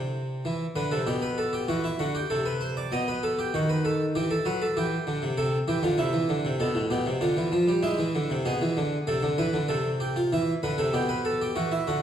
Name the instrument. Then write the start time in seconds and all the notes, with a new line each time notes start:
harpsichord
Already playing: C3
0.45 E3
0.76 D3 B4
0.91 C3 A4
1.07 B2 G4
1.22 B4
1.38 A4
1.53 G4
1.68 E3 F#4
1.84 E4
1.99 D3 F#4
2.15 G4
2.30 C3 A4
2.46 B4
2.61 C5
2.77 D5
2.92 B2 D#5
3.08 B4
3.23 A4
3.39 G4
3.54 D#3 F#4
3.69 B4
3.85 A4
4.15 E3 G4
4.31 A4
4.45 F#3 B4
4.62 A4
4.77 E3 G4
5.07 D3
5.22 C3
5.38 C3 A4
5.68 E3 G4
5.83 D3 F4
5.98 C3 E4
6.13 E3
6.29 D3
6.45 C3
6.60 B2 A4
6.75 A2
6.91 B2 G4
7.06 C3
7.21 D3 F4
7.37 E3
7.52 F3
7.68 G3
7.83 G#3 E4
7.99 E3
8.15 D3
8.30 C3
8.45 B2 G#4
8.61 E3
8.77 D3
9.07 C3 A4
9.23 D3
9.38 E3 B4
9.54 D3
9.68 C3 A4
10.00 G4
10.16 F4
10.33 E3 E4
10.63 D3 B4
10.78 C3 A4
10.93 B2 G4
11.09 B4
11.25 A4
11.42 G4
11.56 E3 F#4
11.72 E4
11.87 D3 F#4